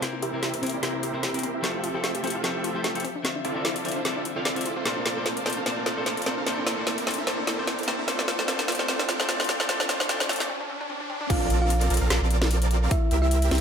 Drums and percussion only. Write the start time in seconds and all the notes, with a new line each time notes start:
0.02 snare, closed hi-hat
0.23 closed hi-hat
0.43 snare, closed hi-hat
0.54 closed hi-hat
0.63 closed hi-hat
0.67 closed hi-hat
0.70 closed hi-hat
0.83 snare, closed hi-hat
1.03 closed hi-hat
1.23 snare, closed hi-hat
1.34 closed hi-hat
1.39 closed hi-hat
1.43 closed hi-hat
1.64 snare, closed hi-hat
1.84 closed hi-hat
2.04 snare, closed hi-hat
2.15 closed hi-hat
2.24 closed hi-hat
2.27 closed hi-hat
2.30 closed hi-hat
2.44 snare, closed hi-hat
2.64 closed hi-hat
2.84 snare, closed hi-hat
2.95 closed hi-hat
3.00 closed hi-hat
3.05 closed hi-hat
3.25 snare, closed hi-hat
3.45 closed hi-hat
3.65 snare, closed hi-hat
3.76 closed hi-hat
3.85 closed hi-hat
3.89 closed hi-hat
3.92 closed hi-hat
4.05 snare, closed hi-hat
4.25 closed hi-hat
4.45 snare, closed hi-hat
4.56 closed hi-hat
4.61 closed hi-hat
4.66 closed hi-hat
4.85 snare, closed hi-hat
5.06 snare, closed hi-hat
5.26 snare, closed hi-hat
5.37 closed hi-hat
5.46 snare, closed hi-hat
5.50 closed hi-hat
5.53 closed hi-hat
5.66 snare, closed hi-hat
5.86 snare, closed hi-hat
6.06 snare, closed hi-hat
6.17 closed hi-hat
6.22 closed hi-hat
6.26 snare, closed hi-hat
6.47 snare, closed hi-hat
6.67 snare, closed hi-hat
6.87 snare, closed hi-hat
6.98 closed hi-hat
7.07 snare, closed hi-hat
7.11 closed hi-hat
7.14 closed hi-hat
7.27 snare, closed hi-hat
7.47 snare, closed hi-hat
7.67 snare, closed hi-hat
7.79 closed hi-hat
7.83 closed hi-hat
7.88 snare, closed hi-hat
8.08 snare, closed hi-hat
8.19 snare
8.28 snare, closed hi-hat
8.39 snare
8.48 snare, closed hi-hat
8.59 snare, closed hi-hat
8.68 snare, closed hi-hat
8.72 closed hi-hat
8.75 closed hi-hat
8.79 snare
8.88 snare, closed hi-hat
8.99 snare
9.09 snare, closed hi-hat
9.20 snare
9.29 snare, closed hi-hat
9.40 snare, closed hi-hat
9.44 closed hi-hat
9.49 snare, closed hi-hat
9.60 snare
9.69 snare, closed hi-hat
9.80 snare
9.89 snare, closed hi-hat
10.00 snare
10.09 snare, closed hi-hat
10.20 snare, closed hi-hat
10.29 snare, closed hi-hat
10.33 closed hi-hat
10.36 closed hi-hat
10.40 snare
11.30 kick, closed hi-hat, crash
11.50 closed hi-hat
11.70 closed hi-hat
11.81 closed hi-hat
11.90 closed hi-hat
11.94 closed hi-hat
11.97 closed hi-hat
12.10 snare, closed hi-hat
12.31 closed hi-hat
12.42 snare
12.51 closed hi-hat
12.62 closed hi-hat
12.71 closed hi-hat
12.91 kick, closed hi-hat
13.11 closed hi-hat
13.31 closed hi-hat
13.42 closed hi-hat
13.51 snare, closed hi-hat
13.55 closed hi-hat